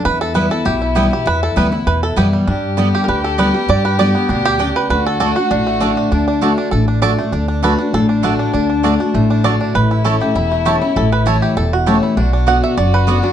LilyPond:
<<
  \new Staff \with { instrumentName = "Mandolin" } { \time 4/4 \key d \major \tempo 4 = 198 r4 <b e' b' g''>8 r4. <b e' b' g''>8 r8 | r4 <b e' b' g''>8 r4. <b e' b' g''>8 r8 | r4 <b g' d'' g''>8 r4. <b g' d'' g''>8 r8 | r4 <b g' d'' g''>8 r4. <b g' d'' g''>8 r8 |
r4 <a fis' d'' a''>8 r4. <a fis' d'' a''>8 r8 | r4 <a fis' d'' a''>8 r4. <a fis' d'' a''>8 r8 | r4 <a fis' d'' a''>8 r4. <a fis' d'' a''>8 r8 | r4 <a fis' d'' a''>8 r4. <a fis' d'' a''>8 r8 |
r4 <a e' cis'' a''>8 r4. <a e' cis'' a''>8 r8 | r4 <a e' cis'' a''>8 r4. <a e' cis'' a''>8 r8 | r4 <b fis' d'' fis''>8 r4. <b fis' d'' fis''>8 r8 | }
  \new Staff \with { instrumentName = "Five-string banjo" } { \time 4/4 \key d \major << { b'8 a'8 b'8 a'8 g'8 r4 g'8 | b'8 a'8 b'4 b'8 a'8 g'8 r8 | r4. g'16. bes'32 b'8 a'8 b'4 | d''8 b'8 d''8 r4 g'4 b'8 |
b'8 a'8 a'8 fis'8 d'4. r8 | r2 a'4 d''4 | r4 b'4 a'4 fis'4~ | fis'4. r4. d''4 |
b'4 a'2~ a'8 r8 | a'8 b'8 cis''4 a'8 fis'4 r8 | r4 fis''8 e''8 d''8 b'4. | } \\ { r2 r8 e'8 g'4~ | g'8 r4 e'4. r8 g8 | d'4 g4. r4 g8~ | g4 r8 b8 d'4 d'4 |
r2 r8 a8 d'8 d'8 | d'8 d'8 a8 d'4 d'4 a8 | d'8 d'4 d'4 d'4 d'8 | d'8 d'8 d'8 d'8 a8 d'4 d'8 |
r8 e'4 g'8 e'8 a8 g'8 e'8~ | e'4 r8 g'4. g'8 e'8 | d'8 d'4. r4 b8 d'8 | } >> }
  \new Staff \with { instrumentName = "Fiddle" } { \time 4/4 \key d \major e'1~ | e'2.~ e'8 r8 | g'1~ | g'1 |
fis'1 | d'2.~ d'8 r8 | d'1~ | d'1 |
e'1~ | e'2.~ e'8 r8 | fis'1 | }
  \new Staff \with { instrumentName = "Steel-string acoustic guitar" } { \time 4/4 \key d \major << { r4 <e g b e'>8 <b e'>8 r4 <e g b e'>8 <b e'>8 | r4 <e g b e'>8 <b e'>8 r4 <e g b e'>4 | r4 <d g b g'>4 r4 <d g b g'>8 <b g'>8 | r4 <d g b g'>8 <b g'>8 r2 |
r4 <d a d' fis'>8 <d' fis'>8 r4 <d a d' fis'>4 | r4 <d a d' fis'>4 r4 <d a d' fis'>8 <d' fis'>8 | r4 <d a d' fis'>8 <d' fis'>8 r4 <d a d' fis'>4 | r4 <d a d' fis'>8 <d' fis'>8 r4 <d a d' fis'>4 |
r4 <e a cis' e'>8 <cis' e'>8 r4 <e a cis' e'>8 <cis' e'>8 | r4 <e a cis' e'>4 r4 <e a cis' e'>4 | r4 <d b d' fis'>4 r4 <d b d' fis'>8 <d' fis'>8 | } \\ { e,2 b,2 | e,2 b,2 | g,2 d2 | g,2 b,4 cis4 |
d2 a,2 | d2 a,2 | d2 a,2 | d2 a,2 |
a,2 e,2 | a,2 r2 | b,2 fis,2 | } >> }
  \new Staff \with { instrumentName = "Upright bass" } { \clef bass \time 4/4 \key d \major e,2 b,,2 | e,4 d,4 e,4 fis,4 | g,2 d,2 | g,2 d,2 |
d,2 a,,2 | d,2 a,,2 | d,2 a,,2 | d,2 a,,2 |
a,,2 e,,2 | a,,2 e,,2 | b,,2 fis,,2 | }
>>